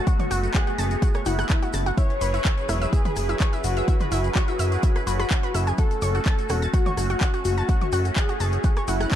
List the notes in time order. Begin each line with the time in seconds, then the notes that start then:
Already playing: A3 F#4, downlifter
0.07 B3 F#4 F#5, kick, closed hi-hat, shaker
0.20 C#5 C#6, closed hi-hat, mid tom, shaker
0.31 F#1 F#4 F#5, open hi-hat, shaker
0.43 closed hi-hat, shaker
0.54 G#4 F#5 F#6, kick, clap, closed hi-hat, shaker
0.67 F#4 F#5, closed hi-hat, shaker
0.78 F#1 A5 A6, open hi-hat, shaker
0.91 closed hi-hat, shaker
1.02 F#4 F#5, kick, closed hi-hat, shaker
1.14 C#5 C#6, cross-stick, closed hi-hat, shaker
1.26 F#1 E4 F#4 F#5, open hi-hat, shaker
1.39 F#5 F#6, cross-stick, closed hi-hat, shaker
1.49 kick, clap, closed hi-hat, shaker
1.62 F#4 F#5, closed hi-hat, shaker
1.73 F#1 A5 A6, cross-stick, open hi-hat, shaker
1.86 F#4 F#5, closed hi-hat, shaker
1.97 F#3 C#4 E4 G#4 B4 C#5 E5, kick, closed hi-hat, shaker
2.10 closed hi-hat, shaker
2.21 F#1 B4 B5, open hi-hat, shaker
2.34 E4 E5, closed hi-hat, shaker
2.45 E5 E6, kick, clap, closed hi-hat, shaker
2.58 closed hi-hat, shaker
2.69 E1 E4 E5, cross-stick, open hi-hat, shaker
2.82 E5 E6, closed hi-hat, shaker
2.93 E4 G#4 E5, kick, closed hi-hat, shaker
3.05 B4 B5, closed hi-hat, mid tom, shaker
3.16 F#1, cross-stick, open hi-hat, shaker
3.29 E4 E5, closed hi-hat, shaker
3.40 C#5 C#6, kick, clap, closed hi-hat, shaker
3.53 E4 E5, closed hi-hat, shaker
3.64 F#1 F#4, open hi-hat, shaker
3.77 E5 E6, closed hi-hat, shaker
3.88 E4 E5, kick, closed hi-hat, shaker
4.00 B4 B5, closed hi-hat, mid tom, shaker
4.12 F#1 E4 E5, open hi-hat, shaker
4.24 closed hi-hat, shaker
4.35 F#4 C#5 C#6, kick, clap, closed hi-hat, shaker
4.48 E4 E5, closed hi-hat, shaker
4.59 F#1 E5 E6, open hi-hat, shaker
4.72 closed hi-hat, shaker
4.83 E4 E5, kick, closed hi-hat, shaker
4.96 B4 B5, cross-stick, closed hi-hat, shaker
5.07 F#1 F#4 B4 B5, open hi-hat, shaker
5.20 B4 B5, cross-stick, closed hi-hat, shaker
5.30 kick, clap, closed hi-hat, shaker
5.43 B4 B5, closed hi-hat, shaker
5.54 F#1 E5 E6, cross-stick, open hi-hat, shaker
5.67 G#4 G#5, closed hi-hat, shaker
5.78 A3 F#4 A4 F#5, kick, closed hi-hat, shaker
5.91 closed hi-hat, shaker
6.02 F#1 C#5 C#6, open hi-hat, shaker
6.15 F#4 F#5, closed hi-hat, shaker
6.26 A5 A6, kick, clap, closed hi-hat, shaker
6.39 closed hi-hat, shaker
6.49 E1 F#4 F#5, cross-stick, open hi-hat, shaker
6.62 A5 A6, closed hi-hat, shaker
6.74 F#4 F#5, kick, closed hi-hat, shaker
6.86 C#5 C#6, closed hi-hat, mid tom, shaker
6.97 F#1, cross-stick, open hi-hat, shaker
7.10 F#4 F#5, closed hi-hat, shaker
7.21 F#5 F#6, kick, clap, closed hi-hat, shaker
7.34 F#4 F#5, closed hi-hat, shaker
7.45 F#1 F#4, open hi-hat, shaker
7.58 A5 A6, closed hi-hat, shaker
7.69 F#4 F#5, kick, closed hi-hat, shaker
7.81 C#5 C#6, closed hi-hat, mid tom, shaker
7.92 F#1 F#4 F#5, open hi-hat, shaker
8.05 closed hi-hat, shaker
8.16 G#4 F#5 F#6, kick, clap, closed hi-hat, shaker
8.28 F#4 F#5, closed hi-hat, shaker
8.40 F#1 A5 A6, open hi-hat, shaker
8.52 closed hi-hat, shaker
8.64 F#4 F#5, kick, closed hi-hat, shaker
8.76 C#5 C#6, cross-stick, closed hi-hat, shaker
8.88 F#1 E4 F#4 F#5, open hi-hat, shaker
9.00 F#5 F#6, cross-stick, closed hi-hat, shaker
9.11 kick, clap, closed hi-hat, shaker